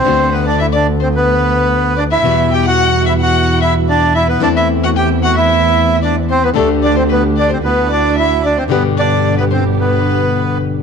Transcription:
<<
  \new Staff \with { instrumentName = "Violin" } { \time 4/4 \key d \mixolydian \tempo 4 = 111 c''8 b'16 d''16 e''16 d''8 c''16 b'4. d''16 e''16~ | e''8 g''16 fis''8. e''16 fis''8. e''8 d''8 e''16 b'16 | d''16 e''8 fis''16 g''8 fis''16 e''4~ e''16 d''8 c''16 b'16 | a'8 d''16 c''16 b'8 d''16 c''16 b'8 d''8 e''8 d''16 c''16 |
b'8 d''8. b'16 c''8 b'4. r8 | }
  \new Staff \with { instrumentName = "Bandoneon" } { \time 4/4 \key d \mixolydian <c' c''>8 <b b'>16 <d' d''>16 <e' e''>16 <d' d''>8 <c' c''>16 <b b'>4. <d' d''>16 <e' e''>16~ | <e' e''>8 <g' g''>16 <fis' fis''>8. <e' e''>16 <fis' fis''>8. <e' e''>8 <d' d''>8 <e' e''>16 <b b'>16 | <d' d''>16 <e' e''>8 <fis' fis''>16 <g' g''>8 <fis' fis''>16 <e' e''>4~ <e' e''>16 <d' d''>8 <c' c''>16 <b b'>16 | <a a'>8 <d' d''>16 <c' c''>16 <b b'>8 <d' d''>16 <c' c''>16 <b b'>8 <d' d''>8 <e' e''>8 <d' d''>16 <c' c''>16 |
<b b'>8 <d' d''>8. <b b'>16 <c' c''>8 <b b'>4. r8 | }
  \new Staff \with { instrumentName = "String section" } { \time 4/4 \key d \mixolydian r1 | <g e' fis'>1 | <a c' e'>1 | <a d' g'>2 <d' e' fis'>2 |
<b d' g'>1 | }
  \new Staff \with { instrumentName = "Nylon-string guitar" } { \time 4/4 \key d \mixolydian <d a b fis'>1 | <b, e g b fis'>1 | <e a c' e'>1 | <d a d' g'>2 r2 |
<b, d g b g'>1 | }
  \new Staff \with { instrumentName = "Double bass" } { \clef bass \time 4/4 \key d \mixolydian d,1 | e,1 | e,1 | d,2 d,2 |
g,,1 | }
>>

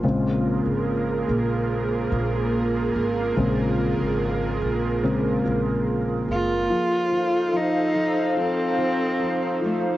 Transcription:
<<
  \new Staff \with { instrumentName = "Analog synth pad" } { \time 4/4 \key bes \minor \tempo 4 = 72 <bes f' aes' bes'>1~ | <bes f' aes' bes'>1 | <ees' a' c'' f''>1 | }
  \new Staff \with { instrumentName = "Cello" } { \time 4/4 \key bes \minor r1 | r2. r8 f'8~ | f'4 ees'4 c'4. a8 | }
  \new Staff \with { instrumentName = "Grand piano" } { \clef bass \time 4/4 \key bes \minor <des aes c'>4. r2 r8 | <des aes c'>2 <des aes c'>8 r4. | f8 f8 f8 f8 f8 f8 f8 f8 | }
  \new Staff \with { instrumentName = "Upright bass" } { \clef bass \time 4/4 \key bes \minor bes,,8. aes,,8. bes,,4 bes,,4 aes,,8 | bes,,8. aes,,8. bes,,4 bes,,4 ges,,8 | r1 | }
>>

